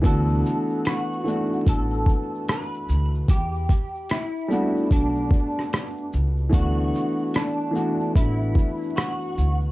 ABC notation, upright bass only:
X:1
M:4/4
L:1/8
Q:"Swing 16ths" 1/4=74
K:Dmix
V:1 name="Upright bass" clef=bass
D,, z3 A,,, z2 D,, | E,, z3 B,,, z2 ^C,, | D,, z3 A,,, z2 D,, |]